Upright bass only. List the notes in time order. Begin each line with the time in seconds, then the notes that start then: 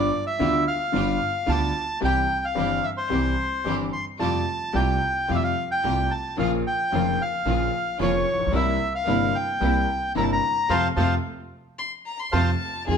0.40 D2
0.94 G1
1.48 D2
2.02 C2
2.57 G1
3.10 C2
3.66 G1
4.20 F2
4.74 C2
5.30 F2
5.84 C2
6.39 A#1
6.92 F1
7.45 A#1
7.99 F1
8.34 A1
8.40 A#1
8.47 B1
8.53 C2
9.07 G1
9.61 C2
10.15 G1
10.69 F2
10.97 F2
12.33 F2
12.88 F2